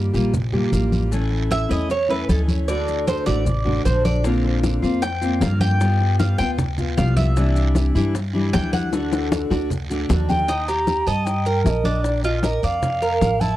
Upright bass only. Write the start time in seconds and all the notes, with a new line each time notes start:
0.14 A#1
0.72 A1
1.70 E2
2.29 D2
3.27 A1
3.85 A#1
4.83 F2
5.42 G2
6.40 D2
6.98 C2
7.95 G2
8.54 D2
9.51 D2
10.10 D#2
11.07 G2
11.65 A#1
12.63 F2
13.21 A1